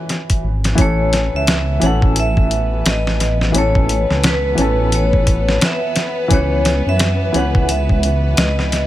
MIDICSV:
0, 0, Header, 1, 6, 480
1, 0, Start_track
1, 0, Tempo, 689655
1, 547, Time_signature, 4, 2, 24, 8
1, 6173, End_track
2, 0, Start_track
2, 0, Title_t, "Vibraphone"
2, 0, Program_c, 0, 11
2, 0, Note_on_c, 0, 76, 93
2, 286, Note_off_c, 0, 76, 0
2, 567, Note_on_c, 0, 73, 95
2, 948, Note_on_c, 0, 76, 103
2, 952, Note_off_c, 0, 73, 0
2, 1285, Note_off_c, 0, 76, 0
2, 1287, Note_on_c, 0, 78, 99
2, 1390, Note_off_c, 0, 78, 0
2, 1528, Note_on_c, 0, 76, 109
2, 2012, Note_off_c, 0, 76, 0
2, 2014, Note_on_c, 0, 75, 96
2, 2452, Note_off_c, 0, 75, 0
2, 2493, Note_on_c, 0, 73, 101
2, 2969, Note_on_c, 0, 71, 100
2, 2974, Note_off_c, 0, 73, 0
2, 3445, Note_on_c, 0, 73, 101
2, 3452, Note_off_c, 0, 71, 0
2, 3888, Note_off_c, 0, 73, 0
2, 3931, Note_on_c, 0, 76, 98
2, 4277, Note_off_c, 0, 76, 0
2, 4408, Note_on_c, 0, 73, 100
2, 4793, Note_off_c, 0, 73, 0
2, 4794, Note_on_c, 0, 76, 107
2, 5096, Note_off_c, 0, 76, 0
2, 5124, Note_on_c, 0, 78, 91
2, 5339, Note_off_c, 0, 78, 0
2, 5356, Note_on_c, 0, 76, 105
2, 5829, Note_on_c, 0, 75, 97
2, 5846, Note_off_c, 0, 76, 0
2, 6173, Note_off_c, 0, 75, 0
2, 6173, End_track
3, 0, Start_track
3, 0, Title_t, "Violin section"
3, 0, Program_c, 1, 48
3, 552, Note_on_c, 1, 71, 81
3, 554, Note_on_c, 1, 59, 77
3, 6173, Note_off_c, 1, 59, 0
3, 6173, Note_off_c, 1, 71, 0
3, 6173, End_track
4, 0, Start_track
4, 0, Title_t, "Upright piano"
4, 0, Program_c, 2, 0
4, 0, Control_c, 2, 64, 127
4, 0, Note_on_c, 2, 52, 86
4, 0, Note_on_c, 2, 61, 83
4, 0, Note_on_c, 2, 71, 97
4, 513, Note_off_c, 2, 52, 0
4, 523, Note_on_c, 2, 52, 90
4, 524, Note_off_c, 2, 61, 0
4, 535, Note_off_c, 2, 71, 0
4, 547, Note_on_c, 2, 61, 80
4, 556, Control_c, 2, 64, 0
4, 566, Note_on_c, 2, 69, 95
4, 683, Control_c, 2, 64, 127
4, 1232, Note_off_c, 2, 52, 0
4, 1244, Note_off_c, 2, 61, 0
4, 1250, Note_on_c, 2, 52, 86
4, 1254, Note_off_c, 2, 69, 0
4, 1273, Note_on_c, 2, 61, 83
4, 1296, Note_on_c, 2, 69, 96
4, 2436, Note_off_c, 2, 52, 0
4, 2447, Note_off_c, 2, 61, 0
4, 2450, Note_on_c, 2, 52, 83
4, 2458, Note_off_c, 2, 69, 0
4, 2470, Note_on_c, 2, 61, 85
4, 2492, Note_on_c, 2, 69, 101
4, 3155, Note_off_c, 2, 52, 0
4, 3166, Note_off_c, 2, 61, 0
4, 3167, Note_on_c, 2, 52, 84
4, 3177, Note_off_c, 2, 69, 0
4, 3189, Note_on_c, 2, 61, 79
4, 3211, Note_on_c, 2, 69, 98
4, 4354, Note_off_c, 2, 52, 0
4, 4365, Note_off_c, 2, 61, 0
4, 4371, Note_on_c, 2, 52, 89
4, 4376, Note_off_c, 2, 69, 0
4, 4394, Control_c, 2, 64, 0
4, 4395, Note_on_c, 2, 61, 86
4, 4412, Note_on_c, 2, 71, 97
4, 4496, Control_c, 2, 64, 127
4, 5076, Note_off_c, 2, 52, 0
4, 5088, Note_off_c, 2, 61, 0
4, 5096, Note_off_c, 2, 71, 0
4, 5097, Note_on_c, 2, 52, 88
4, 5118, Note_on_c, 2, 61, 82
4, 5138, Note_on_c, 2, 71, 95
4, 6173, Note_off_c, 2, 52, 0
4, 6173, Note_off_c, 2, 61, 0
4, 6173, Note_off_c, 2, 71, 0
4, 6173, End_track
5, 0, Start_track
5, 0, Title_t, "Detuned saw bass"
5, 0, Program_c, 3, 39
5, 305, Note_on_c, 3, 32, 83
5, 523, Note_off_c, 3, 32, 0
5, 546, Note_on_c, 3, 33, 101
5, 903, Note_off_c, 3, 33, 0
5, 931, Note_on_c, 3, 37, 79
5, 1249, Note_off_c, 3, 37, 0
5, 1270, Note_on_c, 3, 33, 103
5, 1970, Note_off_c, 3, 33, 0
5, 1990, Note_on_c, 3, 33, 85
5, 2450, Note_off_c, 3, 33, 0
5, 2467, Note_on_c, 3, 33, 102
5, 2823, Note_off_c, 3, 33, 0
5, 2857, Note_on_c, 3, 37, 81
5, 3171, Note_off_c, 3, 37, 0
5, 3189, Note_on_c, 3, 33, 101
5, 3890, Note_off_c, 3, 33, 0
5, 4391, Note_on_c, 3, 37, 100
5, 4745, Note_off_c, 3, 37, 0
5, 4776, Note_on_c, 3, 42, 83
5, 5091, Note_off_c, 3, 42, 0
5, 5111, Note_on_c, 3, 37, 109
5, 5811, Note_off_c, 3, 37, 0
5, 5830, Note_on_c, 3, 37, 91
5, 6173, Note_off_c, 3, 37, 0
5, 6173, End_track
6, 0, Start_track
6, 0, Title_t, "Drums"
6, 65, Note_on_c, 9, 42, 58
6, 70, Note_on_c, 9, 38, 42
6, 135, Note_off_c, 9, 42, 0
6, 139, Note_off_c, 9, 38, 0
6, 206, Note_on_c, 9, 42, 71
6, 208, Note_on_c, 9, 36, 90
6, 276, Note_off_c, 9, 42, 0
6, 278, Note_off_c, 9, 36, 0
6, 448, Note_on_c, 9, 42, 55
6, 453, Note_on_c, 9, 38, 43
6, 518, Note_off_c, 9, 42, 0
6, 523, Note_off_c, 9, 38, 0
6, 542, Note_on_c, 9, 42, 83
6, 544, Note_on_c, 9, 36, 108
6, 611, Note_off_c, 9, 42, 0
6, 614, Note_off_c, 9, 36, 0
6, 785, Note_on_c, 9, 42, 72
6, 790, Note_on_c, 9, 38, 49
6, 854, Note_off_c, 9, 42, 0
6, 859, Note_off_c, 9, 38, 0
6, 1026, Note_on_c, 9, 42, 89
6, 1030, Note_on_c, 9, 38, 122
6, 1095, Note_off_c, 9, 42, 0
6, 1100, Note_off_c, 9, 38, 0
6, 1264, Note_on_c, 9, 42, 67
6, 1333, Note_off_c, 9, 42, 0
6, 1408, Note_on_c, 9, 36, 99
6, 1477, Note_off_c, 9, 36, 0
6, 1503, Note_on_c, 9, 42, 86
6, 1572, Note_off_c, 9, 42, 0
6, 1649, Note_on_c, 9, 36, 94
6, 1719, Note_off_c, 9, 36, 0
6, 1747, Note_on_c, 9, 42, 63
6, 1816, Note_off_c, 9, 42, 0
6, 1988, Note_on_c, 9, 42, 86
6, 1993, Note_on_c, 9, 38, 119
6, 2057, Note_off_c, 9, 42, 0
6, 2062, Note_off_c, 9, 38, 0
6, 2138, Note_on_c, 9, 38, 43
6, 2208, Note_off_c, 9, 38, 0
6, 2230, Note_on_c, 9, 42, 64
6, 2235, Note_on_c, 9, 38, 35
6, 2299, Note_off_c, 9, 42, 0
6, 2304, Note_off_c, 9, 38, 0
6, 2376, Note_on_c, 9, 38, 41
6, 2446, Note_off_c, 9, 38, 0
6, 2467, Note_on_c, 9, 42, 92
6, 2537, Note_off_c, 9, 42, 0
6, 2612, Note_on_c, 9, 36, 92
6, 2682, Note_off_c, 9, 36, 0
6, 2709, Note_on_c, 9, 42, 67
6, 2779, Note_off_c, 9, 42, 0
6, 2857, Note_on_c, 9, 38, 38
6, 2927, Note_off_c, 9, 38, 0
6, 2948, Note_on_c, 9, 42, 89
6, 2953, Note_on_c, 9, 38, 117
6, 3017, Note_off_c, 9, 42, 0
6, 3022, Note_off_c, 9, 38, 0
6, 3186, Note_on_c, 9, 42, 65
6, 3255, Note_off_c, 9, 42, 0
6, 3426, Note_on_c, 9, 42, 79
6, 3496, Note_off_c, 9, 42, 0
6, 3571, Note_on_c, 9, 36, 92
6, 3641, Note_off_c, 9, 36, 0
6, 3666, Note_on_c, 9, 42, 65
6, 3668, Note_on_c, 9, 36, 91
6, 3736, Note_off_c, 9, 42, 0
6, 3737, Note_off_c, 9, 36, 0
6, 3818, Note_on_c, 9, 38, 50
6, 3887, Note_off_c, 9, 38, 0
6, 3908, Note_on_c, 9, 42, 86
6, 3912, Note_on_c, 9, 38, 117
6, 3977, Note_off_c, 9, 42, 0
6, 3982, Note_off_c, 9, 38, 0
6, 4145, Note_on_c, 9, 42, 70
6, 4150, Note_on_c, 9, 38, 53
6, 4215, Note_off_c, 9, 42, 0
6, 4220, Note_off_c, 9, 38, 0
6, 4389, Note_on_c, 9, 42, 90
6, 4390, Note_on_c, 9, 36, 114
6, 4458, Note_off_c, 9, 42, 0
6, 4459, Note_off_c, 9, 36, 0
6, 4629, Note_on_c, 9, 42, 66
6, 4634, Note_on_c, 9, 38, 51
6, 4699, Note_off_c, 9, 42, 0
6, 4704, Note_off_c, 9, 38, 0
6, 4868, Note_on_c, 9, 42, 87
6, 4873, Note_on_c, 9, 38, 120
6, 4938, Note_off_c, 9, 42, 0
6, 4943, Note_off_c, 9, 38, 0
6, 5111, Note_on_c, 9, 42, 64
6, 5181, Note_off_c, 9, 42, 0
6, 5254, Note_on_c, 9, 36, 101
6, 5323, Note_off_c, 9, 36, 0
6, 5351, Note_on_c, 9, 42, 91
6, 5420, Note_off_c, 9, 42, 0
6, 5494, Note_on_c, 9, 36, 92
6, 5564, Note_off_c, 9, 36, 0
6, 5590, Note_on_c, 9, 42, 68
6, 5660, Note_off_c, 9, 42, 0
6, 5828, Note_on_c, 9, 42, 90
6, 5832, Note_on_c, 9, 38, 121
6, 5897, Note_off_c, 9, 42, 0
6, 5902, Note_off_c, 9, 38, 0
6, 5978, Note_on_c, 9, 38, 41
6, 6047, Note_off_c, 9, 38, 0
6, 6071, Note_on_c, 9, 42, 66
6, 6076, Note_on_c, 9, 38, 39
6, 6141, Note_off_c, 9, 42, 0
6, 6145, Note_off_c, 9, 38, 0
6, 6173, End_track
0, 0, End_of_file